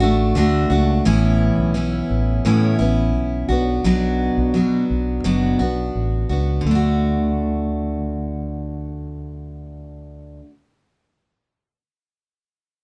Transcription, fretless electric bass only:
0.00 0.32 A1 medium
0.36 0.64 D2 medium
0.70 0.99 C#2 medium
1.06 1.49 A1 medium
1.58 2.01 B1 medium
2.10 2.39 A1 medium
2.45 2.74 A2 medium
2.80 3.14 A1 medium
3.14 3.43 B1 medium
3.49 3.78 B1 medium
3.85 4.28 B1 medium
4.38 4.52 B1 medium
4.55 4.84 B2 medium
4.90 5.19 B1 medium
5.25 5.54 F#1 medium
5.60 5.89 B1 medium
5.95 6.24 A1 medium
6.30 6.58 C#2 medium
6.65 10.40 D2 medium

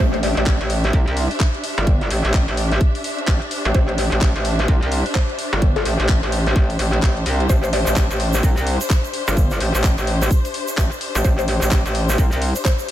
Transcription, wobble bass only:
0.00 0.35 A1 loud
0.37 0.58 A1 medium
0.61 0.92 A1 loud
0.93 1.05 C2 medium
1.08 1.29 C2 loud
1.78 2.09 G1 medium
2.10 2.22 A1 loud
2.25 2.46 A1 medium
2.48 2.79 A1 medium
3.28 3.40 A1 loud
3.65 3.73 A1 loud
3.74 4.10 A1 loud
4.12 4.33 A1 medium
4.36 4.67 A1 loud
4.68 4.80 C2 loud
4.83 5.04 C2 medium
5.53 5.84 G1 medium
5.85 5.97 A1 loud
6.00 6.21 A1 medium
6.23 6.54 A1 loud
6.56 6.78 A1 medium
6.79 7.01 A1 medium
7.03 7.25 A1 loud
7.26 7.48 C2 medium
7.49 7.85 A1 medium
7.87 8.08 A1 medium
8.11 8.42 A1 loud
8.43 8.55 C2 medium
8.57 8.79 C2 loud
9.28 9.59 G1 loud
9.60 9.72 A1 loud
9.75 9.96 A1 medium
9.98 10.29 A1 medium
10.78 10.90 A1 medium
11.15 11.23 A1 medium
11.62 11.83 A1 medium
11.86 12.17 A1 medium
12.18 12.30 C2 medium
12.32 12.54 C2 loud

